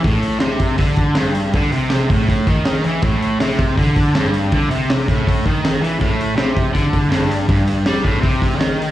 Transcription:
<<
  \new Staff \with { instrumentName = "Distorted electric guitar" } { \clef bass \time 4/4 \key a \minor \tempo 4 = 162 a,4 c4 d4 g,4 | d8 c4 a,4 dis4 e8 | a,4 c4 d4 g,4 | d8 c4 a,4 dis4 e8 |
a,4 c4 d4 g,4 | g,4 g8 a,8 c4 dis4 | }
  \new DrumStaff \with { instrumentName = "Drums" } \drummode { \time 4/4 <hho bd>8 hho8 <hho sn>8 <hho bd>8 <hho bd>8 <hho bd>8 <hho sn>8 hho8 | <hho bd>8 hho8 <hho sn>8 <hho bd>8 <hho bd>8 <hho bd>8 <hho sn>8 hho8 | <hho bd>8 hho8 <hho sn>8 <hho bd>8 <hho bd>8 <hho bd>8 <hho sn>8 hho8 | <hho bd>8 hho8 <hho sn>8 <hho bd>8 <hho bd>8 <hho bd>8 <hho sn>8 hho8 |
<hho bd>8 hho8 <hho sn>8 <hho bd>8 <hho bd>8 <hho bd>8 <hho sn>8 hho8 | <hho bd>8 hho8 <hho sn>8 <hho bd>8 <hho bd>8 <hho bd>8 <hho sn>8 hho8 | }
>>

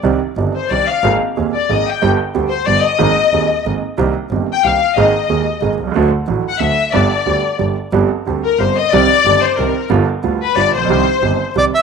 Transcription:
<<
  \new Staff \with { instrumentName = "Bandoneon" } { \time 3/4 \key c \minor \tempo 4 = 183 r2. | r2. | r2. | r2. |
r2. | r2. | r2. | r2. |
r2. | r2. | r2. | r2 d''8 e''8 | }
  \new Staff \with { instrumentName = "Violin section" } { \time 3/4 \key c \minor r4. c''8 d''8 f''8 | r4. d''8 ees''8 g''8 | r4. c''8 d''8 ees''8~ | ees''2 r4 |
r4 \tuplet 3/2 { r4 g''8 } f''4 | ees''2 r4 | r4 \tuplet 3/2 { r4 fis''8 } e''4 | d''2 r4 |
r4. bes'8 c''8 ees''8 | d''4. c''8 bes'8. r16 | r4. b'8 d''8 c''8~ | c''2 r4 | }
  \new Staff \with { instrumentName = "Grand piano" } { \clef bass \time 3/4 \key c \minor <c, c ees c' d' g'>8 r8 <g,, g, ees c' d' g'>8 r8 <c, c ees c' d' g'>8 r8 | <aes,, aes, ees bes c' aes'>8 r8 <ees,, ees, ees bes c' aes'>8 r8 <aes,, aes, ees bes c' aes'>8 r8 | <g,, g, d g b g'>8 r8 <d, d g b g'>8 r8 <g,, g, d g b g'>8 r8 | <aes,, aes, ees bes c' aes'>8 r8 <ees,, ees, ees bes c' aes'>8 r8 <aes,, aes, ees bes c' aes'>8 r8 |
<c, c ees bes c' g'>8 r8 <g,, g, ees bes c' g'>8 r8 <c, c ees bes c' g'>8 r8 | <aes,, aes, ees aes bes aes'>8 r8 <ees,, ees, ees aes bes aes'>8 r8 <aes,, aes, ees aes bes aes'>8 r32 b,,32 c,32 des,32 | <d, d fis a fis'>8 r8 <a,, a, d fis a fis'>8 r8 <d, d fis a fis'>8 r8 | <g,, g, d g b g'>8 r8 <d, d g b g'>8 r8 <g,, g, d g b g'>8 r8 |
<g,, g, d g c' g'>8 r8 <d, d g c' g'>8 r8 <g,, g, d g c' g'>8 r8 | <c, c ees g c' g'>8 r8 <g,, g, ees g c' g'>8 r8 <c, c ees g c' g'>8 r8 | <g,, g, d g b f'>8 r8 <d, d g b f'>8 r8 <g,, g, d g b f'>8 r32 a,,32 bes,,32 b,,32 | <c, c ees g c' g'>8 r8 <g,, g, ees g c' g'>8 r8 <c, c ees g c' g'>8 r8 | }
  \new Staff \with { instrumentName = "Double bass" } { \clef bass \time 3/4 \key c \minor c,8 r8 g,,8 r8 c,8 r8 | aes,,8 r8 ees,8 r8 aes,,8 r8 | g,,8 r8 d,8 r8 g,,8 r8 | aes,,8 r8 ees,8 r8 aes,,8 r8 |
c,8 r8 g,,8 r8 c,8 r8 | aes,,8 r8 ees,8 r8 aes,,8 c,8 | d,8 r8 a,,8 r8 d,8 r8 | g,,8 r8 d,8 r8 g,,8 r8 |
g,,8 r8 d,8 r8 g,,8 r8 | c,8 r8 g,,8 r8 c,8 r8 | g,,8 r8 d,8 r8 g,,8 bes,,8 | c,8 r8 g,,8 r8 c,8 r8 | }
>>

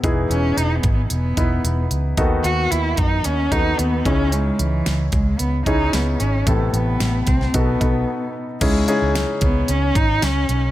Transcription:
<<
  \new Staff \with { instrumentName = "Grand piano" } { \time 4/4 \key cis \minor \tempo 4 = 112 <b dis' e' gis'>4. r4 <b dis' e' b'>4 r8 | <b dis' fis' a'>4. r4 <b dis' fis' a'>4 <cis' dis' e' gis'>8~ | <cis' dis' e' gis'>4 r4. <cis' dis' e' gis'>4 r8 | <c b e' a'>4. r8 <b dis' fis' a'>8 <b dis' fis' a'>4 r8 |
<cis' dis' e' gis'>8 <cis' dis' e' gis'>4. r2 | }
  \new Staff \with { instrumentName = "Grand piano" } { \clef bass \time 4/4 \key cis \minor e4. r2 r8 | dis4. r2 cis8~ | cis4 r2. | a,4. r8 b,4. r8 |
cis4. r2 r8 | }
  \new Staff \with { instrumentName = "Cello" } { \time 4/4 \key cis \minor r8 cis'8 \tuplet 3/2 { dis'8 b8 b8 } b4. r8 | r8 fis'8 e'8 dis'8 cis'8 dis'8 b8 cis'8 | gis8 e4 gis8 b8 dis'8 b8 cis'8 | a8 b4 c'8 b4. r8 |
gis4 r8 b8 cis'8 dis'8 cis'8. r16 | }
  \new Staff \with { instrumentName = "Fingered electric bass" } { \clef bass \time 4/4 \key cis \minor e,,8 e,,8 e,,8 gis,,8 e,,8 e,,8 e,,8 cis,8 | dis,8 dis,8 dis,8 fis,8 dis,8 dis,8 dis,8 cis,8~ | cis,8 cis,8 cis,8 cis,8 cis,8 cis,8 cis,8 gis,,8 | a,,8 a,,8 a,,8 c,8 b,,8 b,,8 r4 |
cis,8 r16 cis,8 r16 cis,8 cis,8 gis,,8 cis,8 b,,8 | }
  \new DrumStaff \with { instrumentName = "Drums" } \drummode { \time 4/4 <hh bd>8 hh8 hh8 <hh bd>8 hh8 <hh bd>8 hh8 hh8 | <hh bd>8 hh8 hh8 <hh bd>8 hh8 <hh bd>8 hh8 <hh bd>8 | hh8 hh8 <hh sn>8 <hh bd>8 hh8 <hh bd>8 <hh sn>8 hh8 | <hh bd>8 hh8 <hh sn>8 <hh bd>16 sn16 <hh bd>8 <hh bd>8 r4 |
<cymc hh bd>8 hh8 <hh sn>8 <hh bd>8 hh8 <hh bd>8 <hh sn>8 hh8 | }
>>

